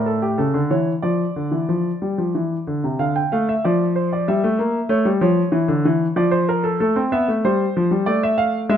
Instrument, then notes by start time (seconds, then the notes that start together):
grand piano
Already playing: A2
0.06 A4
0.22 G4
0.38 C#3 A4
0.54 D3
0.71 E3 C#5
1.02 F3 D5
1.36 D3
1.52 E3
1.69 F3
2.02 G3
2.18 F3
2.35 E3
2.67 D3
2.84 C3
2.99 D3 F5
3.16 G5
3.32 A3 F5
3.49 E5
3.64 F3 D5
3.96 C5
4.13 D5
4.28 G3 E5
4.44 A3
4.59 A#3
4.89 A3 C#5
5.05 G3
5.21 F3 C#5
5.52 E3
5.68 D3
5.85 E3
6.16 F3 D5
6.31 C5
6.49 A#4
6.64 A4
6.80 A3 A4
6.96 C4
7.12 B3 E5
7.28 A3
7.45 G3 C5
7.77 F3
7.91 G3
8.06 A3 D5
8.23 E5
8.38 F5
8.69 G#3 E5